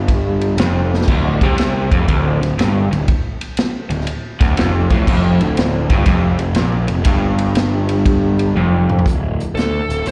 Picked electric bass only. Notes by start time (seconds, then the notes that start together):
Already playing: G1
0.57 F1
1.07 D1
1.42 C2
1.92 F1
2.08 D1
2.41 D1
2.58 G1
2.91 D1
3.90 D1
4.41 D1
4.57 F1
4.90 A1
5.07 F1
5.40 D1
5.90 G1
6.06 F1
6.39 F1
6.56 A#1
6.90 F1
7.06 G1
8.55 F1
9.06 D1
9.55 D2
9.89 D1
10.05 D1